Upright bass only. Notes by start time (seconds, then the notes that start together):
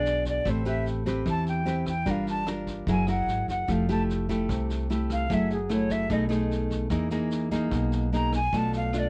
Already playing: B1
0.45 A1
1.26 E2
2.06 G1
2.87 F#1
3.26 G#1
3.48 F#1
3.69 F1
4.49 C2
5.30 F#1
6.10 B1
6.90 E2
7.71 B1
8.53 B1